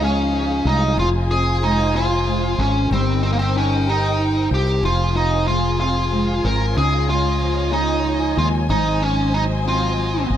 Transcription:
Already playing: fretless electric bass C#2, nylon-string guitar F3 D#4, string section D#4 G#4 C#5 F5
0.00 nylon-string guitar G#3, lead electric guitar C#4
0.32 nylon-string guitar F3
0.65 fretless electric bass C2, nylon-string guitar G#3, lead electric guitar D#4
0.97 fretless electric bass F1, nylon-string guitar F3 F4, string section F4 C5 G#5, lead electric guitar F4
1.30 nylon-string guitar C4, lead electric guitar G#4
1.63 nylon-string guitar G#3, lead electric guitar D#4
1.94 nylon-string guitar C4, lead electric guitar F4
2.26 nylon-string guitar G#3
2.58 fretless electric bass G#1, lead electric guitar C#4
2.90 fretless electric bass G1, nylon-string guitar G3 C5, lead electric guitar C4, string section D#4 A#4 C5 G5
3.23 lead electric guitar C4, nylon-string guitar F4
3.32 lead electric guitar A#3
3.39 lead electric guitar C4, nylon-string guitar G4
3.56 lead electric guitar C#4, nylon-string guitar D#4
3.87 lead electric guitar D#4, nylon-string guitar G4
4.19 nylon-string guitar D#4
4.51 fretless electric bass C2, nylon-string guitar F4, lead electric guitar G4
4.67 nylon-string guitar G4
4.81 fretless electric bass F1, nylon-string guitar F3 F4, string section F4 G#4 G#5
4.85 lead electric guitar F4
5.14 nylon-string guitar C4, lead electric guitar D#4
5.47 nylon-string guitar G#3, lead electric guitar F4
5.79 nylon-string guitar C4, lead electric guitar F4
6.11 nylon-string guitar G#3
6.44 fretless electric bass G#1, nylon-string guitar C4, lead electric guitar A#4
6.75 fretless electric bass C#2, nylon-string guitar C#3 D#4, lead electric guitar G#4, string section C#5 D#5
7.07 nylon-string guitar G#3, lead electric guitar F4
7.40 nylon-string guitar F3
7.71 nylon-string guitar G#3, lead electric guitar D#4
8.03 nylon-string guitar F3
8.36 fretless electric bass D#2, nylon-string guitar G#3, lead electric guitar F4
8.69 fretless electric bass G#1, nylon-string guitar G#2 D#4, string section F#3 C5 D#5, lead electric guitar D#4
9.03 lead electric guitar C#4
9.32 nylon-string guitar F#3, lead electric guitar D#4
9.65 nylon-string guitar C4, lead electric guitar F4
9.97 nylon-string guitar F#3
10.29 fretless electric bass G#1, nylon-string guitar C4

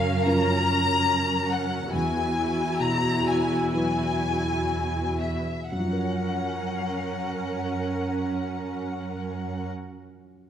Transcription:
Already playing: cello section F#2, grand piano F#2 C#3, viola section C#4 A#4, violin section F5
0.25 grand piano F3 C#4 A#4, violin section A#5
1.50 violin section F#5
1.90 cello section E2, grand piano E2, viola section E4 F#4, violin section G#5
2.80 grand piano B2, violin section A#5
3.27 violin section G#5
3.72 grand piano F#3 E4 B4, violin section G#5
5.21 violin section E5
5.71 cello section F#2, grand piano F#2, viola section C#4 A#4, violin section F#5
5.79 grand piano F3
5.85 grand piano C#4
5.93 grand piano A#4
5.99 grand piano C#5

